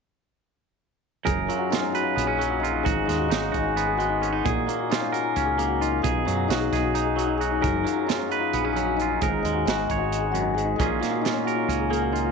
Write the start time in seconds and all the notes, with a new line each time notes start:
1.25 F#1 F#2 G#4 A#4, kick, closed hi-hat
1.48 F#3 F4, closed hi-hat
1.58 F#4
1.70 D#4 F4, snare, closed hi-hat
1.81 C#4
1.92 F#4 B4, closed hi-hat
2.02 F4
2.16 A#1 B3, closed hi-hat
2.27 C#4 G#4
2.39 F#3 G#4, closed hi-hat
2.50 F#4
2.60 D#4 F4
2.65 closed hi-hat
2.71 F4
2.83 G#1 G#2 F#4 G#4, kick, closed hi-hat
3.05 D#2 G#3 D#4, closed hi-hat
3.10 snare
3.18 F#4
3.28 G#1 D#4, snare, closed hi-hat
3.41 G#4
3.52 G#1 D#4 F#4, kick, closed hi-hat
3.63 F#4
3.77 B3, closed hi-hat
3.86 G#4
3.97 G#3 F#4, closed hi-hat
4.09 D#4
4.21 C#4 G#4, closed hi-hat
4.32 D#4
4.44 A#1 A#2 G#4, kick, closed hi-hat
4.67 A#3 F4, closed hi-hat
4.79 F#4
4.90 D#4 F4, snare, closed hi-hat
5.01 C#4
5.12 F#4 A#4, closed hi-hat
5.23 F4
5.36 C#2 C#4, closed hi-hat
5.45 G#4
5.58 A#3 G#4, closed hi-hat
5.68 F#4
5.81 D#4 F4, closed hi-hat
5.91 F4
6.02 B1 B2 G#4, kick, closed hi-hat
6.25 F#2 F#3 D#4, closed hi-hat
6.37 F#4
6.48 B1 D#4 F#4, snare, closed hi-hat
6.60 G#4
6.71 B1 D#4 G#4, kick, snare, closed hi-hat
6.83 F#4
6.95 D#4, closed hi-hat
7.05 G#4
7.16 F#3 F#4, closed hi-hat
7.26 D#4
7.38 F#4 G#4, closed hi-hat
7.52 D#4
7.61 F#1 F#2 G#4 A#4, kick, closed hi-hat
7.84 F#3 F4, closed hi-hat
7.96 F#4
8.06 D#4 F4, snare, closed hi-hat
8.18 C#4
8.29 F#4 B4, closed hi-hat
8.40 F4
8.53 A#1 B3, closed hi-hat
8.63 C#4 G#4
8.73 F#3 G#4, closed hi-hat
8.85 F#4
8.97 D#4, closed hi-hat
9.02 F4
9.08 F4
9.21 G#1 G#2 G#4 A#4, kick, closed hi-hat
9.43 D#2 G#3 D#4, closed hi-hat
9.54 F#4
9.66 G#1 D#4 F#4, snare, closed hi-hat
9.76 G#4
9.87 G#1 D#4 C#5, kick, closed hi-hat
9.98 F#4
10.12 closed hi-hat
10.21 G#4
10.32 F#2 F#4, closed hi-hat
10.42 D#4
10.54 G#2 G#4, closed hi-hat
10.65 D#4
10.76 A#1 A#2 C#4 G#4, kick
10.80 A#3 F4 G#4, closed hi-hat
11.00 A#3 F4, snare, closed hi-hat
11.11 F#4
11.21 D#4 F4, closed hi-hat
11.26 snare
11.33 C#4
11.45 F#4 A#4, closed hi-hat
11.56 F4
11.68 C#2 C#4, closed hi-hat
11.79 G#4
11.90 A#3 G#4, closed hi-hat
12.01 F#4
12.12 D#4 F4, closed hi-hat
12.24 F4